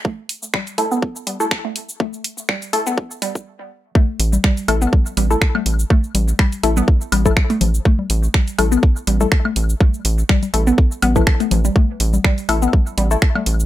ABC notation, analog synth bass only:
X:1
M:4/4
L:1/8
Q:"Swing 16ths" 1/4=123
K:C
V:1 name="Analog synth bass" clef=bass
z8 | z8 | z A,,, z A,,, z A,,, z A,,, | z A,,, z A,,, z A,,, z A,,, |
z A,,, z A,,, z A,,, z A,,, | z A,,, z A,,, z A,,, z A,,, | z A,,, z A,,, z A,,, z A,,, |]